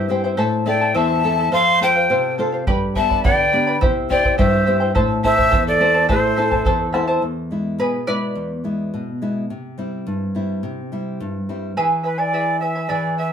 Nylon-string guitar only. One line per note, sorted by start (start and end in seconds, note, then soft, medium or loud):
0.00 0.37 G2 medium
0.08 0.32 C4 soft
0.08 0.33 E4 soft
0.08 0.33 G4 medium
0.37 0.93 A2 medium
0.66 1.12 C4 medium
0.66 1.13 E4 soft
0.66 1.13 A4 medium
0.95 1.51 E2 medium
1.24 1.47 C4 medium
1.24 1.47 E4 soft
1.24 1.47 A4 medium
1.52 2.08 F2 medium
1.81 2.27 C4 soft
1.81 2.27 F4 soft
1.81 2.27 A4 medium
2.10 2.65 C3 medium
2.39 2.61 C4 soft
2.39 2.62 F4 soft
2.39 2.62 A4 medium
2.67 3.22 G2 medium
2.96 3.41 B3 soft
2.96 3.42 D4 soft
2.96 3.42 G4 medium
3.25 3.80 D3 medium
3.53 3.76 B3 soft
3.53 3.76 D4 soft
3.53 3.76 G4 medium
3.81 4.36 C3 medium
4.10 4.55 C4 soft
4.10 4.56 E4 soft
4.10 4.56 G4 medium
4.39 4.93 G2 medium
4.67 4.90 C4 medium
4.67 4.90 E4 soft
4.67 4.90 G4 medium
4.97 5.51 A2 medium
5.24 5.69 C4 soft
5.24 5.69 E4 soft
5.24 5.70 A4 medium
5.54 6.08 E2 medium
5.80 6.03 C4 medium
5.80 6.03 E4 soft
5.80 6.03 A4 medium
6.10 6.64 A2 medium
6.38 6.83 C4 medium
6.38 6.83 E4 soft
6.38 6.83 A4 medium
6.66 7.21 E2 medium
6.94 7.17 C4 soft
6.94 7.17 E4 soft
6.94 7.17 A4 medium
7.22 7.77 E2 medium
7.51 7.96 G#3 soft
7.51 7.96 B3 soft
7.51 7.97 E4 soft
7.78 8.34 B2 medium
8.07 8.52 G#3 soft
8.07 8.53 B3 soft
8.07 8.53 E4 soft
8.35 8.91 E2 medium
8.64 9.09 G#3 soft
8.64 9.10 B3 soft
8.64 9.10 E4 soft
8.94 9.48 B2 medium
9.22 9.44 G#3 soft
9.22 9.44 B3 soft
9.22 9.44 E4 soft
9.50 10.05 C3 medium
9.78 10.23 G3 soft
9.78 10.23 C4 soft
9.78 10.24 E4 soft
10.07 10.61 G2 medium
10.35 10.80 G3 soft
10.35 10.80 C4 soft
10.35 10.80 E4 soft
10.63 11.18 C3 medium
10.92 11.37 G3 soft
10.92 11.37 C4 soft
10.92 11.37 E4 soft
11.20 11.75 G2 medium
11.49 11.71 G3 soft
11.49 11.71 C4 soft
11.49 11.71 E4 medium
11.78 12.87 E3 soft
12.90 13.33 E3 medium